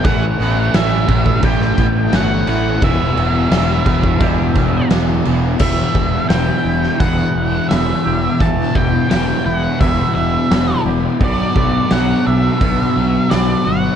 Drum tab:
CC |x-x-x-x-x-x-x-x-|x-x-x-x-x-x-x-x-|x---------------|----------------|
HH |----------------|----------------|----o---o---o---|o---o---o---o---|
SD |----o----o--o---|----o-------o---|-o--o--o----o---|----o-------o---|
BD |o-----ooo-o-----|o-----ooo-o-----|o-o-----o-------|o-o-----o-------|

CC |----------------|
HH |o---o---o---o---|
SD |----o-------o---|
BD |o-o-----o-------|